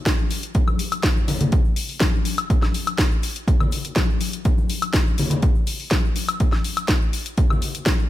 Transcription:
0.06 kick loud
0.06 snare loud
0.06 closed hi-hat soft
0.06 high conga medium
0.06 shaker medium
0.19 shaker soft
0.30 open hi-hat loud
0.30 shaker medium
0.43 closed hi-hat medium
0.43 shaker soft
0.54 kick loud
0.54 closed hi-hat soft
0.54 shaker soft
0.68 high conga medium
0.68 high woodblock medium
0.68 shaker soft
0.79 open hi-hat loud
0.79 shaker medium
0.92 closed hi-hat medium
0.92 high woodblock medium
0.92 shaker soft
1.03 kick loud
1.03 snare loud
1.03 closed hi-hat soft
1.03 shaker soft
1.16 high conga medium
1.16 shaker soft
1.28 open hi-hat loud
1.28 low conga medium
1.28 shaker medium
1.41 closed hi-hat medium
1.41 low conga medium
1.41 shaker soft
1.52 kick loud
1.52 closed hi-hat medium
1.52 shaker soft
1.65 shaker soft
1.76 open hi-hat loud
1.76 shaker medium
1.89 open hi-hat medium
1.89 shaker soft
2.00 kick loud
2.00 snare loud
2.00 closed hi-hat medium
2.00 high conga loud
2.00 shaker medium
2.15 shaker soft
2.25 open hi-hat loud
2.25 shaker medium
2.38 closed hi-hat medium
2.38 high woodblock medium
2.38 shaker soft
2.50 kick loud
2.50 closed hi-hat medium
2.50 shaker medium
2.62 snare soft
2.62 high conga medium
2.62 high woodblock medium
2.62 shaker soft
2.74 open hi-hat loud
2.74 shaker medium
2.87 closed hi-hat medium
2.87 high woodblock medium
2.87 shaker soft
2.98 kick loud
2.98 snare loud
2.98 closed hi-hat medium
2.98 shaker medium
3.12 shaker soft
3.23 open hi-hat loud
3.23 shaker medium
3.36 closed hi-hat medium
3.36 shaker soft
3.48 kick loud
3.48 closed hi-hat medium
3.48 shaker soft
3.60 low conga medium
3.60 high woodblock medium
3.60 shaker soft
3.72 open hi-hat loud
3.72 shaker medium
3.85 closed hi-hat medium
3.85 shaker soft
3.96 kick loud
3.96 snare loud
3.96 closed hi-hat medium
3.96 high conga loud
3.96 shaker soft
4.10 shaker soft
4.21 open hi-hat loud
4.21 shaker medium
4.33 closed hi-hat medium
4.33 shaker soft
4.45 kick loud
4.45 closed hi-hat medium
4.45 shaker medium
4.58 high conga medium
4.58 shaker soft
4.69 open hi-hat loud
4.69 shaker medium
4.82 closed hi-hat medium
4.82 high woodblock medium
4.82 shaker soft
4.93 kick loud
4.93 snare loud
4.93 closed hi-hat medium
4.93 shaker soft
5.07 high conga medium
5.07 shaker soft
5.18 open hi-hat loud
5.18 low conga medium
5.18 shaker loud
5.30 closed hi-hat medium
5.30 low conga medium
5.30 shaker soft
5.42 kick loud
5.42 closed hi-hat medium
5.42 shaker medium
5.55 shaker soft
5.67 open hi-hat loud
5.67 shaker medium
5.80 open hi-hat medium
5.80 shaker soft
5.91 kick loud
5.91 snare loud
5.91 closed hi-hat medium
5.91 high conga medium
5.91 shaker medium
6.05 shaker soft
6.16 open hi-hat loud
6.16 shaker medium
6.29 closed hi-hat medium
6.29 high woodblock medium
6.29 shaker soft
6.40 kick loud
6.40 closed hi-hat medium
6.40 shaker medium
6.52 snare soft
6.52 high conga medium
6.52 high woodblock medium
6.52 shaker soft
6.64 open hi-hat loud
6.64 shaker loud
6.77 closed hi-hat medium
6.77 high woodblock medium
6.77 shaker soft
6.88 kick loud
6.88 snare loud
6.88 closed hi-hat medium
6.88 shaker medium
7.02 shaker soft
7.13 open hi-hat loud
7.13 shaker medium
7.26 closed hi-hat medium
7.26 shaker soft
7.37 kick loud
7.37 closed hi-hat medium
7.37 shaker medium
7.50 low conga medium
7.50 high woodblock medium
7.50 shaker soft
7.62 open hi-hat loud
7.62 shaker medium
7.75 closed hi-hat medium
7.75 shaker soft
7.86 kick loud
7.86 snare loud
7.86 closed hi-hat medium
7.86 high conga medium
7.86 shaker medium
7.99 shaker soft

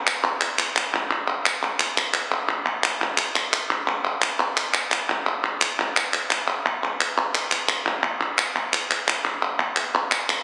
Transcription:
0.07 clap medium
0.24 clap medium
0.41 clap medium
0.59 clap medium
0.76 clap medium
1.11 clap soft
1.28 clap soft
1.45 clap medium
1.63 clap soft
1.80 clap medium
1.97 clap medium
2.14 clap medium
2.32 clap medium
2.49 clap medium
2.84 clap medium
3.18 clap medium
3.35 clap medium
3.53 clap medium
3.88 clap medium
4.05 clap soft
4.22 clap medium
4.39 clap medium
4.57 clap medium
4.74 clap medium
4.92 clap medium
5.27 clap medium
5.44 clap soft
5.61 clap loud
5.96 clap medium
6.14 clap medium
6.31 clap medium
6.48 clap medium
6.84 clap soft
7.01 clap medium
7.18 clap medium
7.34 clap medium
7.51 clap medium
7.68 clap medium
7.86 clap medium
8.38 clap medium
8.73 clap medium
8.91 clap medium
9.08 clap medium
9.25 clap soft
9.60 clap medium
9.76 clap medium
9.95 clap medium
10.11 clap medium
10.29 clap medium

